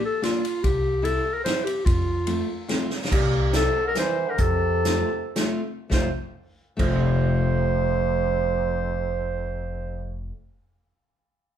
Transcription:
0.05 clarinet A4
0.22 steel-string acoustic guitar A#3 D4 F4, clarinet F4, snare, ride
0.45 ride
0.63 upright bass C2, clarinet G4, kick, ride
1.02 steel-string acoustic guitar G3 C4 E4, clarinet A4, ride
1.34 clarinet A#4
1.44 steel-string acoustic guitar G3 C4 E4, clarinet C5, snare, ride
1.64 clarinet G4, ride
1.85 upright bass F2, clarinet F4, kick, ride
2.27 steel-string acoustic guitar A3 C4 F4, ride
2.68 steel-string acoustic guitar A3 C4 F4, snare, ride
2.90 snare
3.05 snare
3.10 upright bass C2, euphonium A#2, clarinet G4, kick, crash
3.51 euphonium C3, steel-string acoustic guitar G3 C4 E4, snare, closed hi-hat
3.56 clarinet A4
3.83 euphonium D3
3.87 clarinet A#4
3.94 euphonium E3, steel-string acoustic guitar G3 C4 E4, snare, closed hi-hat
3.99 clarinet C5
4.27 euphonium D3, clarinet A#4
4.37 upright bass F2, euphonium C3, kick, closed hi-hat
4.41 clarinet A4
4.85 steel-string acoustic guitar A3 C4 F4, snare, closed hi-hat
5.36 steel-string acoustic guitar A3 C4 F4, snare, closed hi-hat
5.90 upright bass F1, euphonium F2, steel-string acoustic guitar A3 C4 F4, clarinet C5, kick, snare
6.77 upright bass F1, euphonium F2, steel-string acoustic guitar A3 C4, clarinet C5, kick, crash
6.81 steel-string acoustic guitar F4

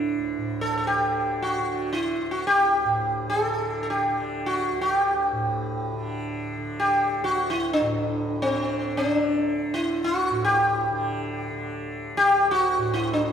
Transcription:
Already playing: tanpura D2 A2 D3
0.18 tanpura D2
0.37 tanpura A2
0.61 sitar A4
0.78 sitar A4
0.87 sitar G4
0.99 tanpura D3
1.42 sitar F#4
1.59 tanpura D3
1.93 sitar E4
2.20 tanpura D2
2.31 sitar F#4
2.47 sitar G4
2.85 tanpura A2
3.30 sitar A4
3.46 tanpura D3
3.83 sitar A4
3.90 sitar G4
4.09 tanpura D3
4.46 sitar F#4
4.72 tanpura D2
4.81 sitar F#4
4.92 sitar G4
5.32 tanpura A2
5.93 tanpura D3
6.57 tanpura D3
6.80 sitar G4
7.20 tanpura D2
7.24 sitar F#4
7.50 sitar E4
7.73 sitar D4
7.81 tanpura A2
8.42 tanpura D3, sitar C4
8.97 sitar D4
9.05 tanpura D3
9.69 tanpura D2
9.74 sitar E4
10.04 sitar F#4
10.30 tanpura A2
10.45 sitar G4
10.91 tanpura D3
11.51 tanpura D3
12.15 tanpura D2, sitar G4
12.51 sitar F#4
12.78 tanpura A2
12.94 sitar E4
13.13 sitar D4

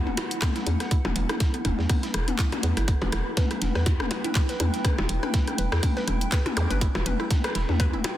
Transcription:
Already playing: ambient pad E4 B4 F#5
0.07 fm bass D1, synth arpeggio sound B3, high tom
0.17 synth arpeggio sound E4, cross-stick, closed hi-hat, percussion blips
0.31 closed hi-hat
0.42 synth arpeggio sound B3, kick, cross-stick, snare, clap, closed hi-hat, high tom
0.56 synth arpeggio sound E4, snare, closed hi-hat
0.67 fm bass E2, closed hi-hat, high tom
0.80 synth arpeggio sound B3, cross-stick, snare, closed hi-hat
0.91 synth arpeggio sound E4, kick, closed hi-hat
1.05 fm bass E1, cross-stick, high tom, percussion blips
1.16 fm bass E1, synth arpeggio sound B3, closed hi-hat
1.29 synth arpeggio sound E4, cross-stick, closed hi-hat, high tom
1.40 kick, snare, closed hi-hat
1.54 synth arpeggio sound B3, closed hi-hat
1.65 fm bass E1, synth arpeggio sound E4, kick, cross-stick, closed hi-hat, high tom
1.79 fm bass E2, snare
1.89 synth arpeggio sound B3, kick, cross-stick, closed hi-hat, open hi-hat, high tom
2.03 synth arpeggio sound E4, snare, closed hi-hat
2.14 fm bass E1, cross-stick, closed hi-hat
2.28 synth arpeggio sound B3, closed hi-hat, high tom
2.39 synth arpeggio sound E4, kick, snare, clap, closed hi-hat
2.52 cross-stick, closed hi-hat, high tom, percussion blips
2.63 fm bass E2, synth arpeggio sound B3, closed hi-hat
2.77 fm bass G1, synth arpeggio sound E4, cross-stick, closed hi-hat
2.88 kick, cross-stick, closed hi-hat
3.02 fm bass E1, synth arpeggio sound B4, closed hi-hat, high tom, percussion blips
3.10 fm bass E1, synth arpeggio sound E4, ambient pad G5, cross-stick, closed hi-hat
3.37 synth arpeggio sound B4, kick, snare, closed hi-hat, high tom
3.51 synth arpeggio sound E4, cross-stick, closed hi-hat
3.62 fm bass E1, snare, closed hi-hat, high tom
3.75 fm bass E2, synth arpeggio sound B4, cross-stick, snare
3.86 synth arpeggio sound E4, kick, closed hi-hat, percussion blips
4.00 fm bass D1, cross-stick, high tom
4.11 synth arpeggio sound B4, closed hi-hat, percussion blips
4.24 synth arpeggio sound E4, closed hi-hat, high tom
4.35 kick, cross-stick, snare, clap, closed hi-hat
4.49 synth arpeggio sound B4, snare, closed hi-hat
4.60 fm bass E2, synth arpeggio sound E4, cross-stick, closed hi-hat, high tom
4.74 snare, closed hi-hat
4.85 synth arpeggio sound B4, kick, cross-stick, closed hi-hat, high tom
4.98 fm bass E1, synth arpeggio sound E4, percussion blips
5.09 fm bass E1, closed hi-hat
5.23 synth arpeggio sound B4, cross-stick, high tom
5.34 synth arpeggio sound E4, kick, snare, closed hi-hat
5.47 cross-stick, closed hi-hat, high tom
5.58 fm bass E1, synth arpeggio sound B4, closed hi-hat
5.72 fm bass E2, synth arpeggio sound E4, cross-stick, snare
5.83 kick, closed hi-hat, open hi-hat, high tom
5.97 synth arpeggio sound B4, snare
6.08 fm bass E1, synth arpeggio sound E4, cross-stick, closed hi-hat, high tom
6.21 closed hi-hat
6.32 synth arpeggio sound B4, kick, cross-stick, snare, clap, closed hi-hat
6.46 synth arpeggio sound E4, closed hi-hat, high tom, percussion blips
6.57 fm bass E2, cross-stick, closed hi-hat, zap
6.70 fm bass G1, synth arpeggio sound B4, closed hi-hat, high tom
6.81 synth arpeggio sound E4, kick, closed hi-hat
6.95 fm bass E1, cross-stick, closed hi-hat, percussion blips
7.06 fm bass E1, synth arpeggio sound B4, closed hi-hat, high tom
7.20 synth arpeggio sound E4, cross-stick
7.31 kick, snare, closed hi-hat, high tom
7.44 synth arpeggio sound B4, cross-stick, closed hi-hat
7.55 fm bass E1, synth arpeggio sound E4, snare, closed hi-hat
7.69 fm bass E2, snare, high tom
7.80 synth arpeggio sound B4, kick, cross-stick, closed hi-hat, percussion blips
7.93 fm bass D1, synth arpeggio sound E4, high tom
8.04 cross-stick, closed hi-hat, percussion blips

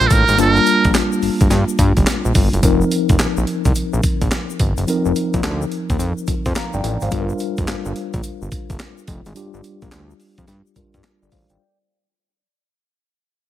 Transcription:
Already playing: tine electric piano G3 A#3 D4 F4 A#4
0.00 analog synth bass A#1, shaker
0.07 analog synth bass A1, muted trumpet A4, kick, closed hi-hat, tambourine, shaker
0.12 muted trumpet A#4
0.28 analog synth bass G#1, closed hi-hat, shaker
0.38 analog synth bass G1, tine electric piano G3 A#3 D4 F4 A5, muted trumpet A#4, closed hi-hat, tambourine, shaker
0.56 shaker
0.66 closed hi-hat, tambourine, shaker
0.84 analog synth bass A#1, kick, closed hi-hat, shaker
0.94 snare, clap, closed hi-hat, tambourine, shaker
1.13 shaker
1.22 analog synth bass G1, open hi-hat, shaker
1.40 analog synth bass G1, kick, closed hi-hat, shaker
1.50 analog synth bass G2, snare, closed hi-hat, tambourine, shaker
1.68 shaker
1.78 analog synth bass G2, kick, closed hi-hat, tambourine, shaker
1.97 analog synth bass G1, kick, closed hi-hat, shaker
2.07 snare, clap, closed hi-hat, tambourine, shaker
2.25 analog synth bass A#1, shaker
2.35 analog synth bass G1, kick, open hi-hat, tambourine, shaker
2.53 analog synth bass F#1, closed hi-hat, shaker
2.62 analog synth bass F1, tine electric piano F3 C4 D#4 A#4, kick, closed hi-hat, tambourine, shaker
2.81 shaker
2.91 closed hi-hat, tambourine, shaker
3.09 analog synth bass F1, kick, closed hi-hat, shaker
3.19 analog synth bass A#1, snare, clap, closed hi-hat, tambourine, shaker
3.37 analog synth bass A#1, shaker
3.47 closed hi-hat
3.65 analog synth bass C2, kick, closed hi-hat, shaker
3.75 closed hi-hat, tambourine, shaker
3.93 analog synth bass A#1, shaker
4.03 kick, closed hi-hat, tambourine, shaker
4.21 analog synth bass A#1, kick, closed hi-hat, shaker
4.31 snare, clap, closed hi-hat, tambourine, shaker
4.50 shaker
4.59 analog synth bass G1, kick, closed hi-hat, tambourine
4.77 analog synth bass F#1, closed hi-hat, shaker
4.87 tine electric piano F3 C4 D#4 A#4, closed hi-hat, tambourine, shaker
5.05 analog synth bass F1, shaker
5.15 closed hi-hat, tambourine, shaker
5.34 analog synth bass A#1, kick, closed hi-hat, shaker
5.43 analog synth bass D2, snare, clap, closed hi-hat, tambourine, shaker
5.62 shaker
5.72 closed hi-hat
5.90 analog synth bass D#2, kick, closed hi-hat, shaker
5.99 analog synth bass F2, closed hi-hat, tambourine, shaker
6.18 shaker
6.27 analog synth bass F2, kick, closed hi-hat, tambourine, shaker
6.45 analog synth bass F2, kick, closed hi-hat, shaker
6.55 tine electric piano F5 A#5, snare, clap, closed hi-hat, tambourine, shaker
6.73 analog synth bass G1, tine electric piano D5 G5, shaker
6.84 analog synth bass A1, closed hi-hat, tambourine
7.01 analog synth bass G#1, tine electric piano C5 F5, closed hi-hat, shaker
7.11 analog synth bass G1, tine electric piano G3 D4 F4 A4, kick, closed hi-hat, tambourine, shaker
7.20 tine electric piano A#4
7.29 shaker
7.38 closed hi-hat, tambourine, shaker
7.57 analog synth bass F1, kick, closed hi-hat, shaker
7.67 analog synth bass G1, snare, clap, closed hi-hat, tambourine, shaker
7.85 analog synth bass G1, shaker
7.96 closed hi-hat
8.13 analog synth bass A#1, kick, closed hi-hat, shaker
8.23 closed hi-hat, tambourine, shaker
8.42 analog synth bass G1, shaker
8.52 kick, closed hi-hat, tambourine, shaker
8.70 analog synth bass G1, kick, closed hi-hat, shaker
8.79 snare, clap, closed hi-hat, tambourine, shaker
8.98 shaker
9.07 analog synth bass F1, kick, closed hi-hat, tambourine
9.25 analog synth bass G#1, closed hi-hat, shaker
9.34 tine electric piano G3 D4 F4 G4, closed hi-hat, tambourine, shaker
9.54 analog synth bass G1, shaker
9.64 closed hi-hat, tambourine, shaker
9.82 analog synth bass A#1, kick, closed hi-hat, shaker
9.92 analog synth bass D2, snare, clap, closed hi-hat, tambourine, shaker
10.10 shaker
10.20 open hi-hat, shaker
10.38 analog synth bass F2, kick, closed hi-hat, shaker
10.48 analog synth bass G2, snare, closed hi-hat, tambourine, shaker
10.66 shaker
10.76 analog synth bass G2, tine electric piano G3 D4 F4 A#4, kick, closed hi-hat, tambourine, shaker
10.94 analog synth bass G2, kick, closed hi-hat, shaker
11.04 snare, clap, closed hi-hat, tambourine, shaker
11.22 analog synth bass G1, tine electric piano A4 D5, shaker
11.32 analog synth bass A1, tine electric piano C5 F5, kick, open hi-hat, tambourine, shaker
11.49 analog synth bass G#1, tine electric piano D5 G5, closed hi-hat, shaker

